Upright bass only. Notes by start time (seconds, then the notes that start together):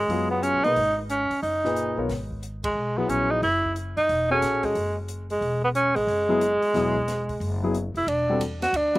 0.08 F#1
0.54 A#1
0.65 B1
0.76 G#1
1.30 muted upright bass stroke
1.43 F#1
1.97 B1
2.09 G#1
2.75 B1
3.09 A#1
3.42 F#1
3.97 F#2
4.09 E1
4.42 A#1
4.75 F#1
5.41 E1
5.95 A1
6.07 F#1
6.62 muted upright bass stroke
6.74 E1
7.40 F#1
7.94 F1
8.07 E1
8.40 E2
8.73 D2